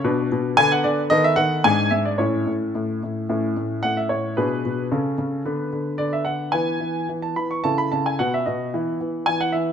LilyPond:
<<
  \new Staff \with { instrumentName = "Grand piano" } { \time 2/4 \key a \major \tempo 4 = 111 << { r4 gis''16 fis''16 d''8 | dis''16 e''16 fis''8 gis''8 e''16 d''16 | cis''4 r4 | r4 fis''16 e''16 cis''8 |
b'4. r8 | r4 d''16 e''16 fis''8 | gis''4 r16 a''16 b''16 cis'''16 | \key e \major a''16 b''16 a''16 gis''16 fis''16 e''16 dis''8 |
r4 gis''16 fis''16 e''8 | } \\ { <d' b'>4 <b b'>4 | <b a'>4 <d' gis'>4 | <cis' e'>2 | <cis' e'>2 |
<d' gis'>4 <cis' a'>4 | <b b'>2 | <b b'>2 | <e' a'>4 <b fis'>4 |
<b e'>2 | } >> }
  \new Staff \with { instrumentName = "Grand piano" } { \clef bass \time 2/4 \key a \major b,8 b,8 d8 d8 | dis8 dis8 gis,8 gis,8 | a,8 a,8 a,8 a,8 | a,8 a,8 a,8 a,8 |
b,8 b,8 cis8 cis8 | d8 d8 d8 d8 | e8 e8 e8 e8 | \key e \major cis8 cis8 b,8 b,8 |
e8 e8 e8 e8 | }
>>